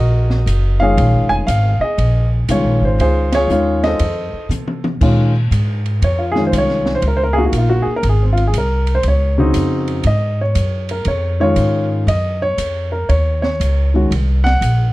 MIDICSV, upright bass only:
0, 0, Header, 1, 3, 480
1, 0, Start_track
1, 0, Key_signature, -5, "minor"
1, 0, Tempo, 505051
1, 921, Time_signature, 4, 2, 24, 8
1, 14189, End_track
2, 0, Start_track
2, 0, Title_t, "Upright bass"
2, 0, Program_c, 0, 32
2, 0, Note_on_c, 0, 34, 86
2, 427, Note_off_c, 0, 34, 0
2, 438, Note_on_c, 0, 30, 88
2, 905, Note_off_c, 0, 30, 0
2, 925, Note_on_c, 0, 34, 95
2, 1065, Note_on_c, 0, 32, 50
2, 1079, Note_off_c, 0, 34, 0
2, 1223, Note_off_c, 0, 32, 0
2, 1229, Note_on_c, 0, 29, 66
2, 1383, Note_off_c, 0, 29, 0
2, 1401, Note_on_c, 0, 32, 86
2, 1697, Note_off_c, 0, 32, 0
2, 1880, Note_on_c, 0, 34, 86
2, 2344, Note_off_c, 0, 34, 0
2, 2361, Note_on_c, 0, 36, 85
2, 2504, Note_off_c, 0, 36, 0
2, 2504, Note_on_c, 0, 34, 57
2, 2668, Note_off_c, 0, 34, 0
2, 2673, Note_on_c, 0, 32, 64
2, 2824, Note_off_c, 0, 32, 0
2, 2837, Note_on_c, 0, 37, 77
2, 3298, Note_off_c, 0, 37, 0
2, 3304, Note_on_c, 0, 39, 76
2, 3775, Note_off_c, 0, 39, 0
2, 3799, Note_on_c, 0, 41, 81
2, 4095, Note_off_c, 0, 41, 0
2, 4268, Note_on_c, 0, 48, 76
2, 4737, Note_off_c, 0, 48, 0
2, 4760, Note_on_c, 0, 46, 82
2, 5223, Note_off_c, 0, 46, 0
2, 5236, Note_on_c, 0, 44, 83
2, 5702, Note_off_c, 0, 44, 0
2, 5720, Note_on_c, 0, 41, 84
2, 6184, Note_off_c, 0, 41, 0
2, 6199, Note_on_c, 0, 36, 76
2, 6663, Note_off_c, 0, 36, 0
2, 6670, Note_on_c, 0, 37, 91
2, 7139, Note_off_c, 0, 37, 0
2, 7150, Note_on_c, 0, 34, 78
2, 7450, Note_off_c, 0, 34, 0
2, 7629, Note_on_c, 0, 32, 86
2, 8099, Note_off_c, 0, 32, 0
2, 8109, Note_on_c, 0, 36, 81
2, 8579, Note_off_c, 0, 36, 0
2, 8588, Note_on_c, 0, 37, 88
2, 9059, Note_off_c, 0, 37, 0
2, 9063, Note_on_c, 0, 41, 79
2, 9536, Note_off_c, 0, 41, 0
2, 9545, Note_on_c, 0, 44, 82
2, 10017, Note_off_c, 0, 44, 0
2, 10030, Note_on_c, 0, 42, 84
2, 10500, Note_off_c, 0, 42, 0
2, 10506, Note_on_c, 0, 41, 88
2, 10978, Note_off_c, 0, 41, 0
2, 10987, Note_on_c, 0, 44, 77
2, 11459, Note_off_c, 0, 44, 0
2, 11469, Note_on_c, 0, 42, 83
2, 11940, Note_off_c, 0, 42, 0
2, 11951, Note_on_c, 0, 41, 76
2, 12422, Note_off_c, 0, 41, 0
2, 12439, Note_on_c, 0, 39, 81
2, 12906, Note_off_c, 0, 39, 0
2, 12923, Note_on_c, 0, 37, 82
2, 13388, Note_off_c, 0, 37, 0
2, 13406, Note_on_c, 0, 36, 78
2, 13870, Note_off_c, 0, 36, 0
2, 13886, Note_on_c, 0, 34, 85
2, 14189, Note_off_c, 0, 34, 0
2, 14189, End_track
3, 0, Start_track
3, 0, Title_t, "Muted upright bass strokes"
3, 1702, Note_on_c, 9, 29, 44
3, 1797, Note_off_c, 9, 29, 0
3, 4116, Note_on_c, 9, 29, 36
3, 4211, Note_off_c, 9, 29, 0
3, 7472, Note_on_c, 9, 29, 39
3, 7567, Note_off_c, 9, 29, 0
3, 14189, End_track
0, 0, End_of_file